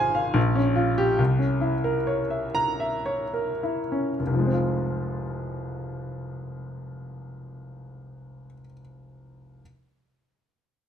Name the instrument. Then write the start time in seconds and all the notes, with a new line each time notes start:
grand piano
Already playing: G#1 C4 F4 G#4 C5 F5 G#5
0.15 F5
0.34 A#1
0.56 C#4
0.76 F4
0.98 G4
1.18 C2
1.39 C#4
1.61 E4
1.84 A#4
2.07 C#5
2.30 E5
2.55 A#5
2.80 E5
3.06 C#5
3.34 A#4
3.63 E4
3.92 C#4
4.19 F1
4.27 C2
4.33 F3
4.39 G#3
4.46 C4
4.53 F4